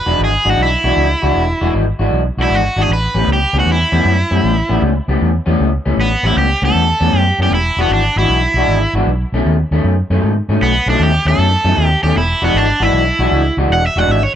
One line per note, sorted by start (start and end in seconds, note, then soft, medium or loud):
0.00 0.20 B4 medium
0.06 0.15 E1 medium
0.06 0.28 E3 medium
0.06 0.28 G#3 medium
0.06 0.28 D4 medium
0.06 0.27 F#4 medium
0.19 0.36 G#1 medium
0.24 0.50 G#4 medium
0.45 0.54 G#1 medium
0.45 0.67 E3 medium
0.45 0.66 G#3 medium
0.45 0.66 D4 medium
0.45 0.66 F#4 medium
0.50 0.60 F#4 medium
0.58 0.75 B1 loud
0.63 1.73 E4 medium
0.84 0.92 B1 loud
0.84 1.05 E3 medium
0.84 1.05 G#3 medium
0.84 1.05 D4 medium
0.84 1.05 F#4 loud
0.97 1.14 C#2 medium
1.22 1.31 C#2 medium
1.22 1.44 E3 medium
1.22 1.44 G#3 medium
1.22 1.43 D4 medium
1.22 1.43 F#4 medium
1.35 1.52 E1 medium
1.61 1.70 E1 medium
1.61 1.82 E3 medium
1.61 1.82 G#3 medium
1.61 1.82 D4 medium
1.61 1.82 F#4 medium
1.74 1.91 G#1 medium
1.99 2.08 G#1 medium
1.99 2.21 E3 medium
1.99 2.21 G#3 medium
1.99 2.20 D4 medium
1.99 2.20 F#4 medium
2.12 2.29 B1 medium
2.37 2.46 B1 medium
2.37 2.60 E3 medium
2.37 2.59 G#3 medium
2.37 2.59 D4 medium
2.37 2.59 F#4 loud
2.42 2.55 E4 medium
2.50 2.67 G#1 medium
2.55 2.81 F#4 medium
2.76 2.85 G#1 medium
2.76 2.90 E3 medium
2.76 2.90 G#3 medium
2.76 2.90 D4 medium
2.76 2.90 F#4 medium
2.81 2.92 G#4 medium
2.89 3.06 A1 medium
2.89 3.29 B4 medium
3.14 3.23 A1 medium
3.14 3.36 A2 medium
3.14 3.36 G3 medium
3.14 3.36 B3 medium
3.14 3.35 C#4 medium
3.27 3.44 C#2 medium
3.33 3.56 G4 medium
3.53 3.62 C#2 medium
3.53 3.75 A2 medium
3.53 3.75 G3 medium
3.53 3.74 B3 medium
3.53 3.74 C#4 medium
3.60 3.69 F#4 medium
3.66 3.83 E2 loud
3.72 4.82 E4 loud
3.92 4.01 E2 medium
3.92 4.13 A2 medium
3.92 4.13 G3 medium
3.92 4.13 B3 loud
3.92 4.13 C#4 loud
4.05 4.22 F#2 medium
4.31 4.39 F#2 medium
4.31 4.52 A2 medium
4.31 4.52 G3 medium
4.31 4.52 B3 medium
4.31 4.51 C#4 medium
4.44 4.61 A1 loud
4.69 4.78 A1 medium
4.69 4.90 A2 medium
4.69 4.90 G3 medium
4.69 4.90 B3 medium
4.69 4.90 C#4 loud
4.82 4.99 C#2 medium
5.08 5.16 C#2 medium
5.08 5.29 A2 medium
5.08 5.29 G3 medium
5.08 5.29 B3 medium
5.08 5.29 C#4 medium
5.21 5.38 E2 medium
5.46 5.55 E2 medium
5.46 5.68 A2 medium
5.46 5.67 G3 medium
5.46 5.67 B3 medium
5.46 5.67 C#4 medium
5.60 5.77 C#2 medium
5.86 5.94 C#2 medium
5.86 6.06 A2 medium
5.86 6.06 G3 medium
5.86 6.06 B3 medium
5.86 6.06 C#4 medium
5.97 6.14 A1 loud
5.97 6.24 B3 loud
6.23 6.32 A1 medium
6.23 6.45 A2 medium
6.23 6.45 G3 medium
6.23 6.44 B3 loud
6.23 6.44 C#4 medium
6.23 6.38 E4 medium
6.36 6.53 C#2 medium
6.36 6.62 G4 medium
6.62 6.70 C#2 medium
6.62 6.83 A2 medium
6.62 6.83 G3 medium
6.62 6.83 B3 medium
6.62 6.83 C#4 medium
6.62 7.18 A4 medium
6.74 6.92 E2 loud
7.00 7.09 E2 medium
7.00 7.22 A2 medium
7.00 7.22 G3 medium
7.00 7.21 B3 medium
7.00 7.21 C#4 loud
7.13 7.30 F#2 medium
7.18 7.39 G4 medium
7.38 7.47 F#2 medium
7.38 7.53 A2 medium
7.38 7.53 G3 medium
7.38 7.53 B3 medium
7.38 7.52 C#4 medium
7.43 7.54 G4 medium
7.51 7.69 E1 loud
7.51 7.79 E4 medium
7.77 7.85 E1 medium
7.77 7.99 E3 medium
7.77 7.99 G#3 medium
7.77 7.99 D4 medium
7.77 7.99 F#4 medium
7.81 7.92 B3 medium
7.90 8.07 G#1 medium
7.90 8.17 D4 medium
8.16 8.25 G#1 medium
8.16 8.38 E3 medium
8.16 8.38 G#3 medium
8.16 8.38 D4 medium
8.16 8.93 E4 medium
8.16 8.38 F#4 medium
8.28 8.46 B1 loud
8.54 8.63 B1 medium
8.54 8.77 E3 medium
8.54 8.77 G#3 medium
8.54 8.77 D4 medium
8.54 8.77 F#4 medium
8.67 8.85 G#1 medium
8.93 9.02 G#1 medium
8.93 9.08 E3 medium
8.93 9.08 G#3 medium
8.93 9.08 D4 medium
8.93 9.07 F#4 medium
9.07 9.24 B1 loud
9.32 9.41 B1 medium
9.32 9.55 B2 medium
9.32 9.54 D#3 medium
9.32 9.54 A3 medium
9.32 9.54 C#4 loud
9.45 9.62 D#2 medium
9.71 9.80 D#2 medium
9.71 9.93 B2 medium
9.71 9.93 D#3 medium
9.71 9.92 A3 medium
9.71 9.92 C#4 medium
9.84 10.01 F#2 medium
10.10 10.18 F#2 loud
10.10 10.31 B2 medium
10.10 10.31 D#3 loud
10.10 10.31 A3 medium
10.10 10.31 C#4 medium
10.23 10.40 G#2 medium
10.49 10.57 G#2 medium
10.49 10.70 B2 medium
10.49 10.70 D#3 medium
10.49 10.70 A3 medium
10.49 10.69 C#4 medium
10.61 10.78 B1 loud
10.61 10.87 B3 loud
10.86 10.95 B1 medium
10.86 11.09 B2 medium
10.86 11.08 D#3 medium
10.86 11.08 A3 loud
10.86 11.08 C#4 medium
10.86 11.01 D4 medium
11.00 11.17 D#2 loud
11.00 11.27 G4 medium
11.25 11.34 D#2 medium
11.25 11.47 B2 medium
11.25 11.47 D#3 medium
11.25 11.47 A3 medium
11.25 11.47 C#4 medium
11.25 11.86 A4 medium
11.38 11.55 F#2 loud
11.64 11.73 F#2 medium
11.64 11.85 B2 medium
11.64 11.85 D#3 medium
11.64 11.85 A3 medium
11.64 11.85 C#4 loud
11.77 11.94 D#2 medium
11.86 12.02 G4 medium
12.03 12.11 D#2 medium
12.03 12.17 B2 medium
12.03 12.16 D#3 medium
12.03 12.16 A3 medium
12.03 12.16 C#4 medium
12.03 12.16 G4 medium
12.15 12.33 E1 loud
12.15 12.42 E4 medium
12.42 12.50 E1 medium
12.42 12.63 E3 medium
12.42 12.63 G#3 medium
12.42 12.57 B3 medium
12.42 12.63 D4 medium
12.42 12.62 F#4 medium
12.54 12.71 G#1 medium
12.54 12.83 D4 medium
12.80 12.89 G#1 medium
12.80 13.02 E3 medium
12.80 13.01 G#3 medium
12.80 13.01 D4 medium
12.80 13.57 E4 loud
12.80 13.01 F#4 medium
12.93 13.10 B1 loud
13.19 13.27 B1 loud
13.19 13.41 E3 medium
13.19 13.41 G#3 medium
13.19 13.40 D4 loud
13.19 13.40 F#4 loud
13.32 13.49 C#2 medium
13.57 13.66 C#2 medium
13.57 13.79 E3 medium
13.57 13.79 G#3 medium
13.57 13.79 D4 medium
13.57 13.79 F#4 medium
13.70 13.87 E1 loud
13.70 13.85 F#5 loud
13.87 13.98 E5 medium
13.96 14.04 E1 medium
13.96 14.18 E3 medium
13.96 14.18 G#3 loud
13.96 14.18 D4 loud
13.96 14.17 F#4 loud
13.96 14.11 F#5 medium
14.08 14.25 G#1 loud
14.08 14.23 E5 medium
14.23 14.34 C#5 medium